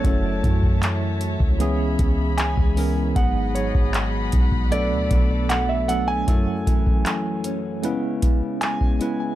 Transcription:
Already playing: F#3 A3 F#4 C#5 A5
0.03 F#1 F#2 F#3 A3 C#4 E4 A4 C#5 E5, kick, closed hi-hat
0.43 F#2 E3, kick, closed hi-hat
0.63 kick
0.82 A3, clap, closed hi-hat
1.21 C#4, closed hi-hat
1.40 C#2, kick
1.59 C#3 E3 G#3 B3 C#4 G#4 B5, closed hi-hat
1.99 C#2 B3, kick, closed hi-hat
2.38 G#3 G#5, clap, closed hi-hat
2.57 C#2, kick
2.76 E3 G#3 B3 C#4 E4 A#4, open hi-hat
3.15 G#1 G#2 F#3 G#3 B3 D#4 G#4 D#5 F#5 B5, kick, closed hi-hat
3.55 F#3 C#5, closed hi-hat
3.75 G#1, kick
3.94 B3, clap, closed hi-hat
4.32 B1 D#4, kick, closed hi-hat
4.52 kick
4.71 B2 F#3 A3 B3 D4 A4 D5, closed hi-hat
4.91 D2
5.11 B1 A3, kick, closed hi-hat
5.50 F#3 F#5, clap, closed hi-hat
5.69 E5
5.88 F#3 A3 B3 D4 A4 F#5, closed hi-hat
6.08 G#5
6.27 F#2 F#3 A3 C#4 E4 A4, kick, closed hi-hat
6.67 E3, kick, closed hi-hat
6.87 kick
7.06 A3, clap, closed hi-hat
7.44 C#4, closed hi-hat
7.83 C#3 G#3 B3 C#4 E4 B4, closed hi-hat
8.22 B3, kick, closed hi-hat
8.61 G#3 G#5, clap, closed hi-hat
8.81 kick
8.99 G#3 B3 C#4 E4 B4, closed hi-hat

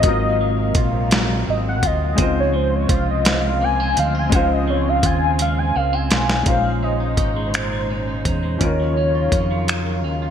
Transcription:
Already playing: G#3 C4 F4 D#5 F5
0.01 G#1 G#2 C3 F#3 A#3 D#4, kick, closed hi-hat
0.06 C4 F4 A#4
0.41 F#3
0.75 A#1 F4, kick, closed hi-hat
1.11 F#3, snare, closed hi-hat
1.47 G#1 C4 D#5
1.69 F#5
1.83 D2 F4 D#5, kick, closed hi-hat
2.04 D#5
2.15 C#2 C#3 F3 G#3 C4 D#4 F4, kick, closed hi-hat
2.21 F4 C5
2.40 C#5
2.54 G#3 C5
2.75 C#5
2.89 C2 F4, kick, closed hi-hat
2.94 F5
3.11 D#5
3.25 G#3, snare, closed hi-hat
3.47 F5
3.61 A#3 G#5
3.80 C4 G#5
3.96 D2 D#4 F5, closed hi-hat
4.15 F4 G#5
4.29 C#2 C#3 G#3 D#4, kick, closed hi-hat
4.35 F4 C5 F5
4.53 D#5
4.67 G#3 C#5
4.89 F5
5.03 D#2 F4 G#5, kick, closed hi-hat
5.24 G#5
5.39 G#3 F5, closed hi-hat
5.59 G#5
5.76 C#2 A#3 F5
5.93 C4 G#5
6.11 B1 F4, snare, closed hi-hat
6.29 snare
6.43 A#1 A#2 C#3 G#3 C#4 D#4, kick, closed hi-hat
6.47 G#3 D#4 F4 C5 F5
6.65 G#3
6.83 C#4 D#5
7.00 D#4
7.17 G#1 C#4, kick, closed hi-hat
7.36 G#3
7.48 C#5
7.53 A#2 C5, finger snap, closed hi-hat
7.73 G#3
7.90 C#4
8.08 D#4
8.25 E2 C#4, kick, closed hi-hat
8.43 G#3
8.57 D#3 F3 C#4 D#4 F4, kick, closed hi-hat
8.61 D#2 D#3 F4 A#4 C#5
8.80 F#3
8.97 C#4
9.15 F4
9.32 F2 C#4, kick, closed hi-hat
9.51 F#3
9.68 D#3, finger snap, closed hi-hat
9.86 F#3
10.04 D#2 C#4
10.22 F4

